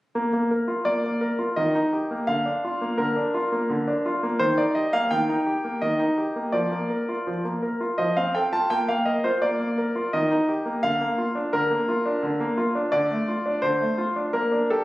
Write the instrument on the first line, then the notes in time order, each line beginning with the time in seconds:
grand piano
0.15 A#3
0.33 A#3
0.51 A#4
0.68 F4
0.85 A#3 D5
1.04 A#3
1.21 A#4
1.39 F4
1.56 D#3 D#5
1.75 D#4
1.93 G4
2.11 A#3
2.27 D3 F5
2.46 D4
2.64 F4
2.81 A#3
2.98 D3 A#4
3.16 D4
3.34 F4
3.52 A#3
3.70 D3
3.88 D4
4.06 F4
4.23 A#3
4.39 D#3 C5
4.58 D#4 D5
4.75 G4 D#5
4.93 A#3 F5
5.11 D#3 G5
5.29 D#4
5.47 G4
5.64 A#3
5.82 D#3 D#5
6.00 D#4
6.18 G4
6.36 A#3
6.52 F3 D5
6.72 A#3
6.90 A#4
7.09 F4
7.27 F3
7.45 A#3
7.62 A#4
7.81 F4
7.98 F3 D#5
8.17 C4 F5
8.35 A4 G5
8.53 F4 A5
8.70 A#3 G5
8.88 A#3 F5
9.05 A#4 D#5
9.24 F4 C5
9.42 A#3 D5
9.60 A#3
9.78 A#4
9.95 F4
10.13 D#3 D#5
10.31 D#4
10.49 G4
10.65 A#3
10.83 D3 F5
11.01 A#3
11.18 F4
11.35 D4
11.53 D3 A#4
11.71 A#3
11.88 F4
12.06 D4
12.23 D3
12.40 A#3
12.58 F4
12.75 D4
12.92 D3 D5
13.11 A3
13.28 F4
13.46 D4
13.62 D3 C5
13.80 A3
13.98 F4
14.16 D4
14.33 A#3 A#4
14.52 D4
14.70 G4 A4